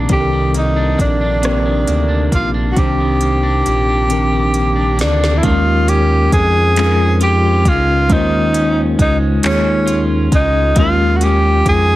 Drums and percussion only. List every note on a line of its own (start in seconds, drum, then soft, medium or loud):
0.09 kick loud
0.09 closed hi-hat medium
0.54 closed hi-hat soft
0.99 kick medium
0.99 closed hi-hat soft
1.43 cross-stick loud
1.43 closed hi-hat medium
1.87 closed hi-hat soft
2.32 kick medium
2.32 closed hi-hat soft
2.77 kick loud
2.77 closed hi-hat soft
3.21 closed hi-hat soft
3.66 closed hi-hat soft
4.10 closed hi-hat medium
4.54 closed hi-hat soft
4.99 snare medium
4.99 closed hi-hat soft
5.24 snare medium
5.43 kick loud
5.43 closed hi-hat medium
5.88 closed hi-hat soft
6.32 kick medium
6.32 closed hi-hat soft
6.76 clap loud
6.76 closed hi-hat medium
7.21 closed hi-hat medium
7.65 kick medium
7.65 closed hi-hat medium
8.10 kick loud
8.10 closed hi-hat medium
8.54 closed hi-hat medium
8.99 kick medium
8.99 closed hi-hat medium
9.43 clap loud
9.43 closed hi-hat medium
9.88 closed hi-hat medium
10.32 kick loud
10.32 closed hi-hat medium
10.76 kick loud
10.76 closed hi-hat medium
11.21 closed hi-hat medium
11.66 kick medium
11.66 closed hi-hat medium